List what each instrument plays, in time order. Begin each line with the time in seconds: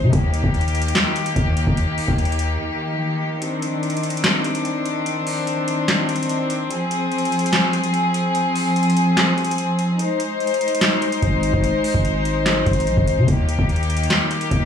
0.03 808-style bass C3
0.13 808-style bass D#2, string section D#3 A#3 G4, kick, closed hi-hat
0.34 closed hi-hat
0.44 808-style bass D#2, kick
0.54 closed hi-hat
0.61 closed hi-hat
0.68 closed hi-hat
0.75 closed hi-hat
0.82 closed hi-hat
0.88 closed hi-hat
0.95 snare, clap, closed hi-hat
1.16 closed hi-hat
1.26 closed hi-hat
1.36 808-style bass D#2, kick, closed hi-hat
1.57 closed hi-hat
1.67 808-style bass D#2, kick
1.77 closed hi-hat
1.98 open hi-hat
2.08 808-style bass D#2, kick
2.18 closed hi-hat
2.25 closed hi-hat
2.32 closed hi-hat
2.39 closed hi-hat
3.42 string section C4 D4, closed hi-hat
3.62 closed hi-hat
3.83 closed hi-hat
3.90 closed hi-hat
3.97 closed hi-hat
4.03 closed hi-hat
4.10 closed hi-hat
4.17 closed hi-hat
4.24 snare, clap, closed hi-hat
4.44 closed hi-hat
4.55 closed hi-hat
4.65 closed hi-hat
4.86 closed hi-hat
5.06 closed hi-hat
5.27 open hi-hat
5.47 closed hi-hat
5.68 closed hi-hat
5.88 snare, clap, closed hi-hat
6.09 closed hi-hat
6.16 closed hi-hat
6.23 closed hi-hat
6.29 closed hi-hat
6.50 closed hi-hat
6.70 string section F3 G#4, closed hi-hat
6.91 closed hi-hat
7.12 closed hi-hat
7.18 closed hi-hat
7.25 closed hi-hat
7.32 closed hi-hat
7.39 closed hi-hat
7.46 closed hi-hat
7.53 snare, clap, closed hi-hat
7.73 closed hi-hat
7.83 closed hi-hat
7.94 closed hi-hat
8.14 closed hi-hat
8.35 closed hi-hat
8.55 open hi-hat
8.76 closed hi-hat
8.83 closed hi-hat
8.90 closed hi-hat
8.97 closed hi-hat
9.17 snare, clap, closed hi-hat
9.38 closed hi-hat
9.44 closed hi-hat
9.51 closed hi-hat
9.58 closed hi-hat
9.79 closed hi-hat
9.99 string section G#3 D#4 C5, closed hi-hat
10.20 closed hi-hat
10.40 closed hi-hat
10.47 closed hi-hat
10.54 closed hi-hat
10.61 closed hi-hat
10.68 closed hi-hat
10.75 closed hi-hat
10.81 snare, clap, closed hi-hat
11.02 closed hi-hat
11.12 closed hi-hat
11.22 808-style bass G#1, kick, closed hi-hat
11.43 closed hi-hat
11.53 808-style bass G#1, kick
11.64 closed hi-hat
11.84 open hi-hat
11.94 808-style bass G#1, kick
12.05 closed hi-hat
12.25 closed hi-hat
12.46 snare, clap, closed hi-hat
12.66 808-style bass G#1, kick, closed hi-hat
12.73 closed hi-hat
12.80 closed hi-hat
12.87 808-style bass A#1, closed hi-hat
12.97 808-style bass G#1, kick
13.07 closed hi-hat
13.18 808-style bass C3
13.28 808-style bass D#2, string section D#3 A#3 G4, kick, closed hi-hat
13.49 closed hi-hat
13.59 808-style bass D#2, kick
13.69 closed hi-hat
13.76 closed hi-hat
13.83 closed hi-hat
13.90 closed hi-hat
13.97 closed hi-hat
14.03 closed hi-hat
14.10 snare, clap, closed hi-hat
14.31 closed hi-hat
14.41 closed hi-hat
14.51 808-style bass D#2, kick, closed hi-hat